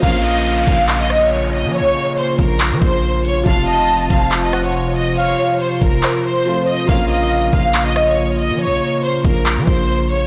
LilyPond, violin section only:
\new Staff \with { instrumentName = "Violin section" } { \time 4/4 \key bes \minor \tempo 4 = 140 f''8 ees''4 f''8. ees''8 des''8. ees''8 | des''4 c''8 bes'4 c''4 des''8 | f''8 ees''4 f''8. ees''8 des''8. ees''8 | des''4 c''8 bes'4 c''4 ees''8 |
f''8 ees''4 f''8. ees''8 des''8. ees''8 | des''4 c''8 bes'4 c''4 des''8 | }